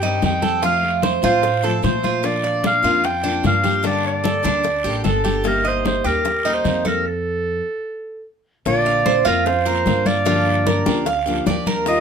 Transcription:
Already playing: upright bass G2, clarinet G5
0.02 steel-string acoustic guitar D#3 G3 C4 G4, cuban tres D#4, high bongo, high conga
0.22 upright bass F2, steel-string acoustic guitar D#3 G3 C4 G4, clarinet G5, high bongo, low bongo, high conga, short guiro
0.42 cuban tres A4, high bongo, high conga, short guiro
0.62 steel-string acoustic guitar C3 F3 A3 C4 F4, cuban tres F4, clarinet F5, high bongo, high conga, long guiro
0.83 high bongo, high conga
1.02 cuban tres C5, high bongo, high conga, short guiro
1.22 upright bass A2, steel-string acoustic guitar F3 A3 C4 F4, cuban tres F4, clarinet C5, high conga, short guiro
1.42 muted steel-string acoustic guitar stroke, high bongo, high conga, long guiro
1.63 steel-string acoustic guitar F3 A3 C4 F4, cuban tres A4, high bongo, high conga
1.82 upright bass A#2, steel-string acoustic guitar F3 A3 C4 F4, cuban tres C5, clarinet C5, high bongo, low bongo, high conga, short guiro
2.03 cuban tres F4, high bongo, high conga, short guiro
2.23 steel-string acoustic guitar F3 A#3 D4 F4, clarinet D5, high bongo, high conga, long guiro
2.44 cuban tres D5, high bongo, high conga
2.63 clarinet F5, high bongo, high conga, short guiro
2.83 upright bass F2, steel-string acoustic guitar A#3 D4 F4, cuban tres F4, high conga, short guiro
3.04 clarinet G5, muted steel-string acoustic guitar stroke, high bongo, high conga, long guiro
3.23 steel-string acoustic guitar A#3 D4 F4, cuban tres D4, high bongo, high conga
3.43 upright bass G2, steel-string acoustic guitar F3 A#3 D4 F4, clarinet F5, high bongo, low bongo, high conga, short guiro
3.63 cuban tres G4, high bongo, high conga, short guiro
3.83 steel-string acoustic guitar D3 G3 A#3 D4 A4, cuban tres D4, clarinet D5, high bongo, high conga, long guiro
4.04 clarinet D5, high bongo, high conga
4.24 cuban tres A4, high bongo, high conga, short guiro
4.43 upright bass D2, steel-string acoustic guitar G3 A#3 D4 A4, cuban tres D4, high conga, short guiro
4.63 muted steel-string acoustic guitar stroke, high bongo, high conga, long guiro
4.84 upright bass A1, steel-string acoustic guitar G3 A#3 D4 A4, cuban tres G4, high bongo, high conga
5.04 upright bass G1, steel-string acoustic guitar G3 A#3 D4 A4, cuban tres A4, clarinet A4, high bongo, low bongo, high conga, short guiro
5.24 cuban tres G4, high bongo, high conga, short guiro
5.44 steel-string acoustic guitar C3 G3 A#3 D#4 G4, clarinet A#4, high bongo, high conga, long guiro
5.65 clarinet C5, cuban tres D#5, high bongo, high conga
5.85 clarinet C5, high bongo, high conga, short guiro
6.04 upright bass D#2, steel-string acoustic guitar G3 A#3 D#4 G4, cuban tres G4, clarinet A#4, high conga, short guiro
6.24 muted steel-string acoustic guitar stroke, high bongo, high conga, long guiro
6.45 steel-string acoustic guitar G3 A#3 D#4 G4, cuban tres D#4, high bongo, high conga
6.54 clarinet C5
6.64 upright bass F2, steel-string acoustic guitar G3 A#3 D#4 G4, high bongo, low bongo, high conga, short guiro
6.85 cuban tres A4, clarinet A#4, high bongo, high conga, short guiro
7.06 clarinet A4
8.65 upright bass A#1, steel-string acoustic guitar D3 A#3 C4 F4, clarinet D5, high bongo, high conga, long guiro
8.86 cuban tres F5, high bongo, high conga
9.06 cuban tres C5, high bongo, high conga, short guiro
9.25 upright bass F2, steel-string acoustic guitar A#3 C4 F4, cuban tres F4, clarinet A#4, high conga, short guiro
9.46 clarinet C5, muted steel-string acoustic guitar stroke, high bongo, high conga, long guiro
9.66 steel-string acoustic guitar A#3 C4 F4, cuban tres A#4, high bongo, high conga
9.86 upright bass G2, steel-string acoustic guitar D3 A#3 C4 F4, high bongo, low bongo, high conga, short guiro
10.06 clarinet D5, cuban tres F5, high bongo, high conga, short guiro
10.25 steel-string acoustic guitar D3 F3 A#3 D4 G4, cuban tres F4, high bongo, high conga, long guiro
10.47 high bongo, high conga
10.66 cuban tres A#4, high bongo, high conga, short guiro
10.86 upright bass D2, steel-string acoustic guitar F3 A#3 D4 G4, high conga, short guiro
11.06 cuban tres F5, muted steel-string acoustic guitar stroke, high bongo, high conga, long guiro
11.26 steel-string acoustic guitar F3 A#3 D4 G4, high bongo, high conga
11.46 upright bass D#2, steel-string acoustic guitar F3 A#3 D4 G4, cuban tres D5, high bongo, low bongo, high conga, short guiro
11.66 cuban tres A#4, high bongo, high conga, short guiro
11.86 steel-string acoustic guitar D#3 G3 D#4 F4, clarinet D#5, high bongo, high conga, long guiro

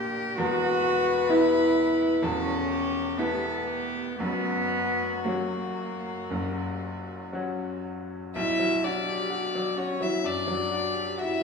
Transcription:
Already playing: grand piano A#1 A#2 A#3 D4 G4, cello G4, violin A#4
0.37 grand piano E1 E2, cello F#4, violin B4
1.29 grand piano B3 E4 G4, cello E4
2.22 grand piano E1 E2, cello C#4, violin A4
2.71 violin G4
3.17 cello B3, grand piano B3 E4 G4, violin A4
3.69 violin G4
4.19 grand piano F#1 F#2, cello B3, violin F#4
5.24 grand piano F#3 C#4 F#4, cello A#3
6.30 grand piano F#1 F#2
7.33 grand piano F#3 C#4 F#4
8.35 grand piano B1, cello E4, violin E5
8.59 grand piano F#3
8.84 cello D4, grand piano F#4, violin D5
9.07 grand piano G4
9.30 grand piano F#4
9.55 grand piano F#3
9.77 cello C#4, grand piano F#4, violin C#5
10.00 grand piano F#3, cello E4, violin E5
10.24 grand piano F#2, cello D4, violin D5
10.47 grand piano F#3
10.71 grand piano F#4
10.93 grand piano G4
11.18 cello E4, grand piano F#4, violin E5

